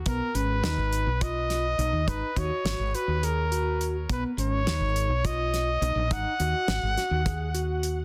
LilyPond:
<<
  \new Staff \with { instrumentName = "Trumpet" } { \time 7/8 \key gis \dorian \tempo 4 = 104 ais'8 b'4. dis''4. | b'8 cis''4 b'8 ais'4 r8 | b'8 cis''4. dis''4. | fis''2. r8 | }
  \new Staff \with { instrumentName = "Tine electric piano" } { \time 7/8 \key gis \dorian b8 cis'8 dis'4 eis'4 dis'8 | dis'8 fis'4 fis'8 gis'8 fis'4 | b8 cis'8 dis'4 eis'4 dis'8 | dis'8 fis'4 fis'8 gis'8 fis'4 | }
  \new Staff \with { instrumentName = "Fretless electric bass" } { \clef bass \time 7/8 \key gis \dorian b,,16 r16 gis,,8 dis,16 gis,,8 b,,4~ b,,16 b,,16 dis,16 | gis,,16 r16 dis,16 r16 gis,,16 gis,,16 r16 dis,4.~ dis,16 | b,,16 r16 gis,,8 dis,16 gis,,8 b,,4~ b,,16 b,,16 ais,,16 | gis,,16 r16 dis,16 r16 gis,,16 gis,,16 r16 dis,4.~ dis,16 | }
  \new DrumStaff \with { instrumentName = "Drums" } \drummode { \time 7/8 <hh bd>8 hh8 <hh sn>8 hh8 <hh bd>8 <hh sn>8 hh8 | <hh bd>8 <hh bd>8 <hh sn>8 hh8 hh8 hh8 hh8 | <hh bd>8 hh8 <hh sn>8 hh8 <hh bd>8 <hh sn>8 hh8 | <hh bd>8 hh8 <hh sn>8 <hh sn>8 <hh bd>8 hh8 hh8 | }
>>